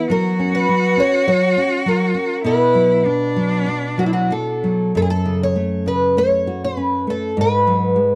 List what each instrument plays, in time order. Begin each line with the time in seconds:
Already playing: cello E4
0.10 nylon-string guitar F#3, cello F#4, twelve-string acoustic guitar A#4
0.39 nylon-string guitar C#4
0.55 twelve-string acoustic guitar B4
0.69 nylon-string guitar F#3
0.97 nylon-string guitar C#4, twelve-string acoustic guitar C#5
1.27 nylon-string guitar F#3, twelve-string acoustic guitar C#5
1.57 nylon-string guitar C#4
1.86 nylon-string guitar F#3, twelve-string acoustic guitar A#4
2.14 nylon-string guitar C#4
2.44 nylon-string guitar B2, cello E4, twelve-string acoustic guitar B4
2.75 nylon-string guitar F#3
3.05 cello D4, nylon-string guitar D4
3.36 nylon-string guitar F#3
3.66 nylon-string guitar F#4
3.98 nylon-string guitar F#3, twelve-string acoustic guitar F#4
4.06 twelve-string acoustic guitar E4
4.13 twelve-string acoustic guitar F#4
4.30 nylon-string guitar F#4, twelve-string acoustic guitar A4
4.64 nylon-string guitar F#3
4.95 nylon-string guitar F#2, twelve-string acoustic guitar A4
5.02 twelve-string acoustic guitar G#4
5.10 twelve-string acoustic guitar A4
5.25 nylon-string guitar C#3
5.43 twelve-string acoustic guitar C#5
5.56 nylon-string guitar A3
5.86 nylon-string guitar C#3, twelve-string acoustic guitar B4
6.17 nylon-string guitar A3, twelve-string acoustic guitar C#5
6.47 nylon-string guitar F#4
6.64 twelve-string acoustic guitar B4
6.77 nylon-string guitar C#4
7.07 nylon-string guitar A3, twelve-string acoustic guitar A4
7.37 nylon-string guitar G#2, twelve-string acoustic guitar B4
7.67 nylon-string guitar F#3
7.96 nylon-string guitar G#3